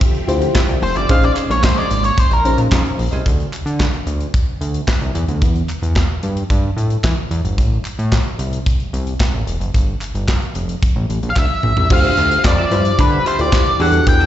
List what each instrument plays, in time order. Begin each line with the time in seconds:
Already playing: string machine D3 F3 C4 G4 E5
0.01 muted clean electric guitar stroke, kick, closed hi-hat
0.14 muted clean electric guitar stroke, closed hi-hat
0.28 analog synth bass D2, fm electric piano E4 F4 G4 C5, closed hi-hat
0.41 muted clean electric guitar stroke, closed hi-hat
0.54 clean electric guitar F4 G4 C5 E5, kick, snare, clap
0.68 analog synth bass C2, muted clean electric guitar stroke, closed hi-hat
0.82 analog synth bass F1, lead electric guitar C5, muted clean electric guitar stroke, open hi-hat
0.95 analog synth bass G1, clean electric guitar F4 G4 C5 E5, lead electric guitar D5, closed hi-hat
1.08 analog synth bass A#1, string machine G#3 A#3 C#4, clean electric guitar C#4 G#4 C5 D#5, fm electric piano C#4 D#4 G#4 C5, lead electric guitar F5, kick, closed hi-hat
1.22 lead electric guitar D5, muted clean electric guitar stroke, closed hi-hat
1.36 clean electric guitar C#4 G#4 C5 D#5, clap, closed hi-hat
1.50 analog synth bass A#1, clean electric guitar C#4 G#4 C5 F5, lead electric guitar C#5, closed hi-hat
1.64 lead electric guitar C5, kick, snare, clap
1.76 clean electric guitar C#4 G#4 C5 D#5, lead electric guitar D5, closed hi-hat
1.90 analog synth bass G#1, muted clean electric guitar stroke, closed hi-hat
2.04 lead electric guitar C#5, muted clean electric guitar stroke, closed hi-hat
2.17 lead electric guitar C5, muted clean electric guitar stroke, kick, closed hi-hat
2.30 analog synth bass A#1, lead electric guitar A#4, muted clean electric guitar stroke, closed hi-hat
2.45 analog synth bass A#1, fm electric piano C#4 D#4 G#4 C5, closed hi-hat
2.58 analog synth bass A#2, muted clean electric guitar stroke, closed hi-hat
2.71 analog synth bass F2, clean electric guitar C#4 G#4 C5 D#5, kick, snare, clap
2.85 muted clean electric guitar stroke, closed hi-hat
2.98 analog synth bass A#1, muted clean electric guitar stroke, open hi-hat
3.11 analog synth bass C2, clean electric guitar C#4 G#4 C5 D#5, closed hi-hat
3.26 analog synth bass D2, kick, closed hi-hat
3.40 closed hi-hat
3.53 clap, closed hi-hat
3.66 analog synth bass D3, closed hi-hat
3.80 kick, snare, clap
3.93 closed hi-hat
4.07 analog synth bass D2, closed hi-hat
4.20 closed hi-hat
4.34 kick, closed hi-hat
4.61 analog synth bass D2, closed hi-hat
4.74 closed hi-hat
4.88 kick, snare, clap
5.01 analog synth bass C2, closed hi-hat
5.14 analog synth bass E2, closed hi-hat
5.28 analog synth bass D2, closed hi-hat
5.42 analog synth bass E2, kick, closed hi-hat
5.56 closed hi-hat
5.69 clap, closed hi-hat
5.82 analog synth bass E2, closed hi-hat
5.96 kick, snare, clap
6.23 analog synth bass G2, closed hi-hat
6.37 closed hi-hat
6.50 analog synth bass G2, kick, closed hi-hat
6.77 analog synth bass A2, closed hi-hat
6.90 closed hi-hat
7.04 analog synth bass E3, kick, snare, clap
7.31 analog synth bass E2, closed hi-hat
7.44 analog synth bass G1, closed hi-hat
7.58 analog synth bass A1, kick, closed hi-hat
7.85 clap, closed hi-hat
7.99 analog synth bass A2, closed hi-hat
8.12 kick, snare, clap
8.39 analog synth bass C2, closed hi-hat
8.53 closed hi-hat
8.66 kick, closed hi-hat
8.80 closed hi-hat
8.93 analog synth bass C2, closed hi-hat
9.07 closed hi-hat
9.20 kick, snare, clap
9.33 analog synth bass A1
9.47 analog synth bass E1, closed hi-hat
9.60 analog synth bass F#1, closed hi-hat
9.74 analog synth bass G1, kick, closed hi-hat
10.01 clap, closed hi-hat
10.15 analog synth bass G1, closed hi-hat
10.28 kick, snare, clap
10.42 closed hi-hat
10.55 analog synth bass F1, closed hi-hat
10.69 closed hi-hat
10.83 kick, closed hi-hat
10.96 analog synth bass A1
11.10 analog synth bass A1, closed hi-hat
11.23 analog synth bass A#1, closed hi-hat
11.30 lead electric guitar F5
11.36 analog synth bass D2, lead electric guitar E5, kick, snare, clap
11.63 analog synth bass A#1, mid tom
11.77 analog synth bass C2, floor tom
11.90 analog synth bass D2, fm electric piano D4 F4 G4 C5, lead electric guitar F5, muted clean electric guitar stroke, kick, crash
12.03 clean electric guitar F4 G4 C5 E5, closed hi-hat
12.17 analog synth bass D2, clean electric guitar F4 G4 C5 E5, closed hi-hat
12.30 muted clean electric guitar stroke, closed hi-hat
12.44 analog synth bass F2, lead electric guitar D5, muted clean electric guitar stroke, kick, snare, clap
12.58 clean electric guitar F4 G4 C5 E5, closed hi-hat
12.71 analog synth bass G2, fm electric piano E4 F4 G4 C5, clean electric guitar F4 G4 C5 E5, closed hi-hat
12.85 muted clean electric guitar stroke, closed hi-hat
12.98 analog synth bass D3, lead electric guitar B4, muted clean electric guitar stroke, kick, closed hi-hat
13.12 clean electric guitar F4 G4 C5 E5
13.25 clean electric guitar F4 G4 C5 E5, lead electric guitar C5, closed hi-hat
13.39 analog synth bass D2, fm electric piano E4 F4 G4 B4, lead electric guitar D5, muted clean electric guitar stroke, closed hi-hat
13.46 fm electric piano C5
13.52 kick, snare, clap
13.65 muted clean electric guitar stroke, closed hi-hat
13.79 analog synth bass E2, clean electric guitar G3 D4 F#4 A4, fm electric piano D4 F#4 G4 G#4, lead electric guitar F#5, open hi-hat
13.87 fm electric piano A4
13.93 muted clean electric guitar stroke, closed hi-hat
14.07 analog synth bass E2, lead electric guitar G5, muted clean electric guitar stroke, kick, closed hi-hat
14.20 clean electric guitar G3 D4 F#4 A4, closed hi-hat